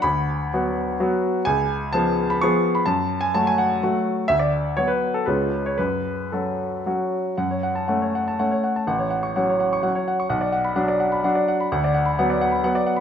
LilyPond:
<<
  \new Staff \with { instrumentName = "Grand piano" } { \time 3/4 \key fis \minor \tempo 4 = 126 b''2~ b''8 r8 | gis''4 a''8. b''16 cis'''8. b''16 | a''8. gis''16 a''16 gis''16 fis''4 r8 | e''16 d''8. cis''16 b'8 a'16 b'8. cis''16 |
b'4 a'4. r8 | fis''16 cis''16 fis''16 a''16 fis''16 cis''16 fis''16 a''16 fis''16 cis''16 fis''16 a''16 | fis''16 cis''16 fis''16 cis'''16 fis''16 cis''16 fis''16 cis'''16 fis''16 cis''16 fis''16 cis'''16 | fis''16 d''16 fis''16 b''16 fis''16 d''16 fis''16 b''16 fis''16 d''16 fis''16 b''16 |
fis''16 d''16 fis''16 b''16 fis''16 d''16 fis''16 b''16 fis''16 d''16 fis''16 b''16 | }
  \new Staff \with { instrumentName = "Grand piano" } { \time 3/4 \key fis \minor d,4 <fis b fis'>4 <fis b fis'>4 | cis,4 <eis b gis'>4 <eis b gis'>4 | fis,4 <fis a fis'>4 <fis a fis'>4 | d,4 <fis b fis'>4 <cis, gis cis' eis'>4 |
fis,4 <fis cis' fis'>4 <fis cis' fis'>4 | fis,4 <a cis'>4 <a cis'>4 | a,,4 <fis cis'>4 <fis cis'>4 | b,,4 <fis d'>4 <fis d'>4 |
d,4 <fis b>4 <fis b>4 | }
>>